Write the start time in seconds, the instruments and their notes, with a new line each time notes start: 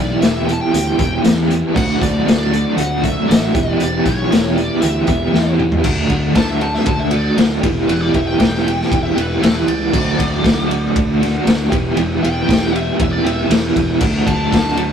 Already playing: fingered electric bass B1, overdriven electric guitar E3 E4 G4, lead electric guitar D5
0.00 overdriven electric guitar B3
0.21 fingered electric bass E1, overdriven electric guitar E3 B3 E4 G4, lead electric guitar E5, snare, closed hi-hat
0.46 overdriven electric guitar B3 E4 G4, lead electric guitar G5, closed hi-hat
0.51 overdriven electric guitar E3, lead electric guitar A5
0.61 lead electric guitar G5
0.73 fingered electric bass D2, overdriven electric guitar E3 B3 E4 G4, closed hi-hat
0.97 fingered electric bass E1, overdriven electric guitar B3 E4 G4, kick, closed hi-hat
1.22 fingered electric bass E2, overdriven electric guitar E3 B3 E4 G4, snare, closed hi-hat
1.47 overdriven electric guitar E3 B3 E4 G4, closed hi-hat
1.73 fingered electric bass D2, overdriven electric guitar D3 F#3 A3 D4 F#4, lead electric guitar F#5, kick, crash
1.99 fingered electric bass D2, overdriven electric guitar A3 D4 F#4, lead electric guitar D5, kick, closed hi-hat
2.04 snare
2.26 fingered electric bass D2, overdriven electric guitar F#3 A3 D4 F#4, lead electric guitar D5, snare, closed hi-hat
2.51 overdriven electric guitar D3 F#3 A3 D4 F#4, closed hi-hat
2.76 fingered electric bass D2, overdriven electric guitar F#3 A3 D4 F#4, lead electric guitar F#5, closed hi-hat
3.02 overdriven electric guitar A3 D4 F#4, lead electric guitar E5, kick, closed hi-hat
3.27 fingered electric bass A1, overdriven electric guitar F#3 A3 D4 F#4, lead electric guitar E5
3.31 snare, closed hi-hat
3.54 fingered electric bass E1, overdriven electric guitar E3 B3 E4 G4, kick, closed hi-hat
3.78 fingered electric bass E1, overdriven electric guitar E3 B3 E4 G4, lead electric guitar D5, closed hi-hat
4.04 fingered electric bass B1, overdriven electric guitar B3 E4 G4, lead electric guitar C#5, kick, snare, closed hi-hat
4.30 fingered electric bass E1, overdriven electric guitar E3 B3 E4 G4, snare, closed hi-hat
4.56 overdriven electric guitar E3 B3 E4 G4, lead electric guitar D5, closed hi-hat
4.80 fingered electric bass D2, overdriven electric guitar E3 B3 E4 G4, lead electric guitar E5, closed hi-hat
5.07 fingered electric bass E1, overdriven electric guitar B3 E4 G4, kick, closed hi-hat
5.33 fingered electric bass E2, overdriven electric guitar E3 B3 E4 G4, snare
5.59 overdriven electric guitar E3 B3 E4 G4, mid tom
5.72 floor tom
5.84 fingered electric bass D2, overdriven electric guitar D3 F#3 A3 D4 F#4, kick, crash
6.09 fingered electric bass D2, overdriven electric guitar A3 D4 F#4, kick, ride
6.34 fingered electric bass D2, overdriven electric guitar D3 F#3 A3 D4 F#4, lead electric guitar A5, kick, snare, ride
6.48 lead electric guitar E5
6.60 overdriven electric guitar A3 D4 F#4, lead electric guitar A5, ride
6.75 lead electric guitar E5, snare
6.86 fingered electric bass D2, lead electric guitar A5, kick, ride
6.99 lead electric guitar E5
7.11 overdriven electric guitar A3 D4 F#4, lead electric guitar D5, ride
7.37 fingered electric bass D2, overdriven electric guitar F#3 A3 D4 F#4, snare, ride
7.61 fingered electric bass E1, overdriven electric guitar E3 B3 E4 G4, kick, ride
7.87 fingered electric bass E1, overdriven electric guitar E3 B3 E4 G4, lead electric guitar B4, ride
8.01 lead electric guitar D5
8.13 fingered electric bass E1, overdriven electric guitar B3 E4 G4, lead electric guitar E5, kick, ride
8.27 lead electric guitar G5
8.38 fingered electric bass E1, overdriven electric guitar E3 B3 E4 G4, kick, snare, ride
8.55 snare
8.63 overdriven electric guitar B3 E4 G4
8.68 ride
8.81 snare
8.92 fingered electric bass E1, kick, ride
9.03 lead electric guitar E5
9.15 fingered electric bass E1, overdriven electric guitar B3 E4 G4, lead electric guitar B4, ride
9.41 fingered electric bass E1, overdriven electric guitar E3 B3 E4 G4, lead electric guitar A4, snare, ride
9.57 lead electric guitar B4
9.67 fingered electric bass C#2, lead electric guitar D5, ride
9.92 fingered electric bass D2, overdriven electric guitar D3 F#3 A3 D4 F#4, kick, crash
10.16 fingered electric bass D2, overdriven electric guitar A3 D4 F#4, kick, ride
10.41 fingered electric bass D2, overdriven electric guitar D3 F#3 A3 D4 F#4, kick, ride
10.47 snare
10.67 overdriven electric guitar A3 D4 F#4
10.71 ride
10.96 fingered electric bass D2, kick, ride
11.20 overdriven electric guitar A3 D4 F#4, ride
11.24 snare
11.44 fingered electric bass D2, overdriven electric guitar F#3 A3 D4 F#4, ride
11.48 snare
11.70 fingered electric bass E1, overdriven electric guitar E3 B3 E4 G4, kick, ride
11.94 fingered electric bass E1, overdriven electric guitar E3 B3 E4 G4, ride
12.21 fingered electric bass E1, overdriven electric guitar B3 E4 G4, lead electric guitar G5, ride
12.46 fingered electric bass E1, overdriven electric guitar E3 B3 E4 G4, kick
12.50 snare, ride
12.64 snare
12.72 overdriven electric guitar B3 E4 G4, ride
12.78 lead electric guitar E5
13.00 fingered electric bass E1, lead electric guitar E5, kick, ride
13.13 lead electric guitar D5
13.23 fingered electric bass E1, overdriven electric guitar B3 E4 G4, lead electric guitar E5, ride
13.47 fingered electric bass E1, overdriven electric guitar E3 B3 E4 G4, ride
13.52 snare
13.76 fingered electric bass E1, kick, ride
14.00 fingered electric bass D2, overdriven electric guitar D3 F#3 A3 D4 F#4, kick, crash
14.25 fingered electric bass D2, overdriven electric guitar A3 D4 F#4, lead electric guitar A5, kick, ride
14.50 fingered electric bass D2, overdriven electric guitar D3 F#3 A3 D4 F#4, kick, ride
14.54 snare
14.68 snare
14.77 overdriven electric guitar A3 D4 F#4, ride